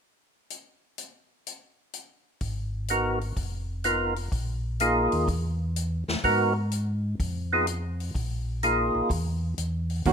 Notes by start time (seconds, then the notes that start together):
0.50 closed hi-hat
0.98 closed hi-hat
1.47 closed hi-hat
1.93 closed hi-hat
2.41 G#1, kick, open hi-hat
2.88 B3 D#4 F#4 A#4, closed hi-hat
3.21 open hi-hat
3.37 F1, kick, open hi-hat
3.84 B3 D#4 F4 A#4, closed hi-hat
4.16 open hi-hat
4.32 A#1, kick, open hi-hat
4.80 A#3 D#4 F4 G#4, closed hi-hat
5.12 D#2, open hi-hat
5.27 E2, kick, open hi-hat
5.76 closed hi-hat
6.08 E2, snare
6.24 G#2 B3 D#4 F#4 A#4, kick, open hi-hat
6.72 closed hi-hat
7.20 F2, kick, open hi-hat
7.53 B3 D#4 F4 G#4
7.67 closed hi-hat
8.00 open hi-hat
8.15 A#1, kick, open hi-hat
8.63 A#3 D#4 F4 G#4, closed hi-hat
8.95 A#1
9.10 E2, kick, open hi-hat
9.58 E2, closed hi-hat
9.90 open hi-hat
10.05 D#2 D#3 A#3 C#4 F#4, kick, open hi-hat